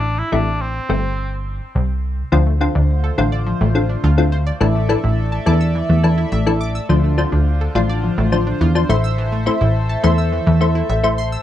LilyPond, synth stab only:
\new Staff \with { instrumentName = "Synth stab" } { \time 4/4 \key d \minor \tempo 4 = 105 <c a e'>16 r16 <c a e'>8. r16 <c a c'>4. r4 | <d c' f'>8 <d c' f'>8. r16 <d c' f'>8. r16 <d c' f'>8 r16 <d c' f'>8 r16 | <e d' a'>8 <e d' a'>8. r16 <e d' a'>8. r16 <e d' a'>8 r16 <e d' a'>8 r16 | <f d' c''>8 <f d' c''>8. r16 <f d' f'>8. r16 <f d' c''>8 r16 <f d' c''>16 <a e' c''>8~ |
<a e' c''>16 r16 <a e' c''>8. r16 <a e' c''>8. r16 <a e' c''>8 r16 <a e' c''>8 r16 | }